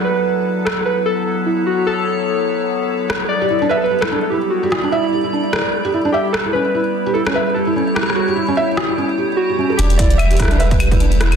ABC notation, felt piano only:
X:1
M:4/4
L:1/16
Q:"Swing 16ths" 1/4=148
K:Edor
V:1 name="Felt piano"
z16 | z16 | z G E D e z G E D z E z2 G E D | e z G E D z E z2 G E D e z G E |
C z E z2 G E C e z G E C z E z | z G E C e z G E C z G z2 G C A | D z E z2 G E D e z G E D z E z |]